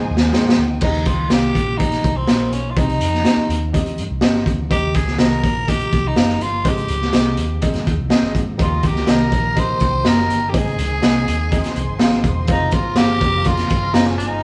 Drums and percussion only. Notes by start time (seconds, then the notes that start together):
0.17 snare
0.33 snare
0.49 snare
0.81 kick, crash
0.94 closed hi-hat
1.05 kick, closed hi-hat
1.30 snare, closed hi-hat
1.55 kick, closed hi-hat
1.80 kick, closed hi-hat
1.92 snare, closed hi-hat
2.04 kick, closed hi-hat
2.28 snare, closed hi-hat
2.52 closed hi-hat
2.77 kick, closed hi-hat
2.89 closed hi-hat
3.01 closed hi-hat
3.14 snare
3.25 snare, closed hi-hat
3.50 closed hi-hat
3.74 kick, closed hi-hat
3.86 closed hi-hat
3.98 closed hi-hat
4.21 snare, closed hi-hat
4.35 snare
4.46 kick, closed hi-hat
4.71 kick, closed hi-hat
4.94 kick, closed hi-hat
5.07 snare
5.19 snare, closed hi-hat
5.44 kick, closed hi-hat
5.68 kick, closed hi-hat
5.79 closed hi-hat
5.92 kick, closed hi-hat
6.16 snare, closed hi-hat
6.29 snare
6.41 closed hi-hat
6.65 kick, closed hi-hat
6.78 closed hi-hat
6.88 closed hi-hat
7.02 snare
7.13 snare, closed hi-hat
7.37 closed hi-hat
7.62 kick, closed hi-hat
7.73 snare, closed hi-hat
7.87 kick, closed hi-hat
8.10 snare, closed hi-hat
8.23 snare
8.35 kick, closed hi-hat
8.59 kick, closed hi-hat
8.83 kick, closed hi-hat
8.96 snare
9.07 snare, closed hi-hat
9.32 kick, closed hi-hat
9.57 kick, closed hi-hat
9.80 kick, closed hi-hat
10.05 snare, closed hi-hat
10.19 snare
10.30 closed hi-hat
10.54 kick, closed hi-hat
10.67 closed hi-hat
10.79 closed hi-hat
11.03 snare, closed hi-hat
11.28 closed hi-hat
11.52 kick, closed hi-hat
11.64 snare, closed hi-hat
11.76 closed hi-hat
11.99 snare, closed hi-hat
12.12 snare
12.24 kick, closed hi-hat
12.47 kick, closed hi-hat
12.71 kick, closed hi-hat
12.96 snare, closed hi-hat
13.21 kick, closed hi-hat
13.45 kick, closed hi-hat
13.57 snare, closed hi-hat
13.70 kick, closed hi-hat
13.94 snare, closed hi-hat
14.08 snare
14.20 closed hi-hat